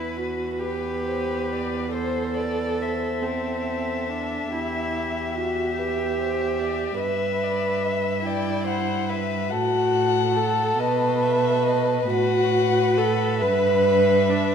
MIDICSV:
0, 0, Header, 1, 5, 480
1, 0, Start_track
1, 0, Key_signature, 1, "minor"
1, 0, Tempo, 888889
1, 1048, Time_signature, 6, 3, 24, 8
1, 1048, Tempo, 862069
1, 2488, Tempo, 829876
1, 4888, Tempo, 846262
1, 6328, Tempo, 884956
1, 8136, End_track
2, 0, Start_track
2, 0, Title_t, "Violin"
2, 0, Program_c, 0, 40
2, 335, Note_on_c, 0, 71, 43
2, 556, Note_off_c, 0, 71, 0
2, 578, Note_on_c, 0, 72, 43
2, 823, Note_on_c, 0, 74, 45
2, 831, Note_off_c, 0, 72, 0
2, 1050, Note_on_c, 0, 72, 46
2, 1058, Note_off_c, 0, 74, 0
2, 1295, Note_on_c, 0, 71, 40
2, 1303, Note_off_c, 0, 72, 0
2, 1532, Note_on_c, 0, 72, 42
2, 1541, Note_off_c, 0, 71, 0
2, 1769, Note_on_c, 0, 69, 45
2, 1777, Note_off_c, 0, 72, 0
2, 2486, Note_off_c, 0, 69, 0
2, 2489, Note_on_c, 0, 67, 49
2, 3215, Note_on_c, 0, 71, 44
2, 3223, Note_off_c, 0, 67, 0
2, 3450, Note_on_c, 0, 72, 45
2, 3458, Note_off_c, 0, 71, 0
2, 3683, Note_on_c, 0, 74, 49
2, 3692, Note_off_c, 0, 72, 0
2, 3924, Note_on_c, 0, 76, 54
2, 3932, Note_off_c, 0, 74, 0
2, 4170, Note_on_c, 0, 74, 46
2, 4178, Note_off_c, 0, 76, 0
2, 4400, Note_on_c, 0, 76, 52
2, 4409, Note_off_c, 0, 74, 0
2, 4640, Note_off_c, 0, 76, 0
2, 4643, Note_on_c, 0, 79, 52
2, 4881, Note_off_c, 0, 79, 0
2, 4895, Note_on_c, 0, 78, 56
2, 5127, Note_on_c, 0, 76, 56
2, 5136, Note_off_c, 0, 78, 0
2, 5354, Note_on_c, 0, 78, 73
2, 5363, Note_off_c, 0, 76, 0
2, 6087, Note_on_c, 0, 75, 58
2, 6095, Note_off_c, 0, 78, 0
2, 6331, Note_on_c, 0, 76, 65
2, 6339, Note_off_c, 0, 75, 0
2, 6554, Note_on_c, 0, 75, 65
2, 6562, Note_off_c, 0, 76, 0
2, 6806, Note_on_c, 0, 78, 74
2, 6814, Note_off_c, 0, 75, 0
2, 7512, Note_off_c, 0, 78, 0
2, 7515, Note_on_c, 0, 76, 70
2, 8136, Note_off_c, 0, 76, 0
2, 8136, End_track
3, 0, Start_track
3, 0, Title_t, "Violin"
3, 0, Program_c, 1, 40
3, 0, Note_on_c, 1, 71, 41
3, 308, Note_off_c, 1, 71, 0
3, 318, Note_on_c, 1, 71, 41
3, 1029, Note_off_c, 1, 71, 0
3, 1048, Note_on_c, 1, 72, 40
3, 1282, Note_off_c, 1, 72, 0
3, 1287, Note_on_c, 1, 74, 42
3, 1536, Note_on_c, 1, 76, 35
3, 1545, Note_off_c, 1, 74, 0
3, 3915, Note_off_c, 1, 76, 0
3, 3919, Note_on_c, 1, 76, 46
3, 4647, Note_on_c, 1, 74, 54
3, 4656, Note_off_c, 1, 76, 0
3, 4881, Note_off_c, 1, 74, 0
3, 4885, Note_on_c, 1, 72, 52
3, 5124, Note_on_c, 1, 71, 53
3, 5133, Note_off_c, 1, 72, 0
3, 5363, Note_on_c, 1, 69, 55
3, 5372, Note_off_c, 1, 71, 0
3, 6797, Note_off_c, 1, 69, 0
3, 6800, Note_on_c, 1, 71, 60
3, 8136, Note_off_c, 1, 71, 0
3, 8136, End_track
4, 0, Start_track
4, 0, Title_t, "Viola"
4, 0, Program_c, 2, 41
4, 0, Note_on_c, 2, 64, 46
4, 92, Note_on_c, 2, 66, 47
4, 101, Note_off_c, 2, 64, 0
4, 320, Note_on_c, 2, 67, 60
4, 329, Note_off_c, 2, 66, 0
4, 1044, Note_off_c, 2, 67, 0
4, 1047, Note_on_c, 2, 69, 61
4, 1757, Note_on_c, 2, 60, 50
4, 1766, Note_off_c, 2, 69, 0
4, 2247, Note_on_c, 2, 62, 52
4, 2255, Note_off_c, 2, 60, 0
4, 2484, Note_on_c, 2, 64, 47
4, 2493, Note_off_c, 2, 62, 0
4, 2966, Note_on_c, 2, 66, 52
4, 2974, Note_off_c, 2, 64, 0
4, 3200, Note_off_c, 2, 66, 0
4, 3203, Note_on_c, 2, 67, 67
4, 3910, Note_off_c, 2, 67, 0
4, 3918, Note_on_c, 2, 71, 66
4, 4631, Note_off_c, 2, 71, 0
4, 4641, Note_on_c, 2, 64, 60
4, 5112, Note_off_c, 2, 64, 0
4, 5360, Note_on_c, 2, 66, 72
4, 5846, Note_on_c, 2, 69, 70
4, 5854, Note_off_c, 2, 66, 0
4, 6090, Note_on_c, 2, 71, 82
4, 6099, Note_off_c, 2, 69, 0
4, 6799, Note_off_c, 2, 71, 0
4, 6802, Note_on_c, 2, 66, 84
4, 7284, Note_on_c, 2, 69, 78
4, 7292, Note_off_c, 2, 66, 0
4, 7518, Note_on_c, 2, 71, 85
4, 7526, Note_off_c, 2, 69, 0
4, 8002, Note_on_c, 2, 62, 78
4, 8010, Note_off_c, 2, 71, 0
4, 8136, Note_off_c, 2, 62, 0
4, 8136, End_track
5, 0, Start_track
5, 0, Title_t, "Cello"
5, 0, Program_c, 3, 42
5, 0, Note_on_c, 3, 40, 36
5, 2469, Note_off_c, 3, 40, 0
5, 2494, Note_on_c, 3, 40, 42
5, 3906, Note_off_c, 3, 40, 0
5, 3929, Note_on_c, 3, 43, 44
5, 5371, Note_on_c, 3, 45, 47
5, 5380, Note_off_c, 3, 43, 0
5, 6085, Note_off_c, 3, 45, 0
5, 6088, Note_on_c, 3, 47, 61
5, 6788, Note_off_c, 3, 47, 0
5, 6805, Note_on_c, 3, 45, 59
5, 7521, Note_on_c, 3, 43, 67
5, 7529, Note_off_c, 3, 45, 0
5, 8136, Note_off_c, 3, 43, 0
5, 8136, End_track
0, 0, End_of_file